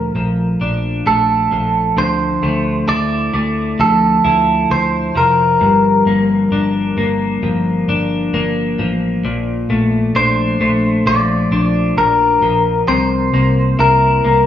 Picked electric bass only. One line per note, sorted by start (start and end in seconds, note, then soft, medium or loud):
0.00 0.10 D2 medium
0.15 0.55 A#1 loud
0.61 1.01 A#1 medium
1.06 1.46 A#1 medium
1.51 1.92 A#1 medium
1.97 2.37 D2 loud
2.43 2.83 D2 medium
2.88 3.28 D2 medium
3.34 3.74 D2 medium
3.80 4.19 D2 loud
4.25 4.65 D2 loud
4.70 5.10 D2 medium
5.16 5.56 F1 medium
5.61 6.01 G1 loud
6.06 6.46 G1 loud
6.52 6.92 G1 medium
6.97 7.37 G1 medium
7.43 7.83 G1 loud
7.88 8.28 G1 loud
8.34 8.74 G1 medium
8.79 9.19 A1 loud
9.25 9.65 A#1 loud
9.70 10.10 A#1 loud
10.15 10.55 A#1 loud
10.61 11.01 A#1 medium
11.06 11.46 A#1 loud
11.51 11.92 A#1 medium
11.96 12.37 A#1 loud
12.42 12.82 A#1 medium
12.88 13.28 C2 loud
13.34 13.74 C2 loud
13.79 14.19 C2 loud
14.25 14.46 C2 medium